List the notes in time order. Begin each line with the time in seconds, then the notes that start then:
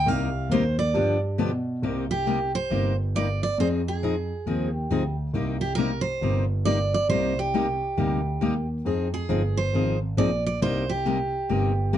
0.06 C2 C3 G3 A#3 D#4 G4 F5
0.49 D#2 C3 G3 A#3 D#4 G4 C5
0.79 D5
0.94 G2 D3 F3 B3 D4 G4
1.38 B2 D3 F3 B3 D4 G4
1.82 C2 C3 G3 A#3 D#4 G4
2.11 G4
2.26 C3 G3 A#3 D#4 G4
2.55 C5
2.70 G1 C3 G3 A#3 D#4 G4
3.15 C3 G3 A#3 D#4 G4 D5
3.43 D5
3.58 F2 F3 C4 D#4 G#4 C5
3.88 G#4
4.03 F3 C4 D#4 G#4
4.46 D#2 F3 C4 D#4 G#4
4.71 G4
4.90 D2 F3 C4 D#4 G#4
5.34 C2 C3 G3 A#3 D#4 G4
5.61 G4
5.75 C3 G3 A#3 D#4 G4 A#4
6.01 C5
6.21 G1 C3 G3 A#3 D#4 G4
6.65 C3 G3 A#3 D#4 G4 D5
6.94 D5
7.09 C2 C3 G3 A#3 D#4 G4 C5
7.39 G4
7.54 C3 G3 A#3 D#4 G4
7.97 D2 C3 G3 A#3 D#4 G4
8.41 D#2 C3 G3 A#3 D#4 G4
8.85 F2 F3 C4 D#4 G#4
9.14 G#4
9.29 G1 F3 C4 D#4 G#4
9.57 C5
9.73 G#1 F3 C4 D#4 G#4
10.17 A#1 F3 C4 D#4 G#4 D5
10.46 D5
10.61 C2 C3 G3 A#3 D#4 G4 C5
10.89 G4
11.05 C3 G3 A#3 D#4 G4
11.49 G1 C3 G3 A#3 D#4 G4
11.93 C3 G3 A#3 D#4 G4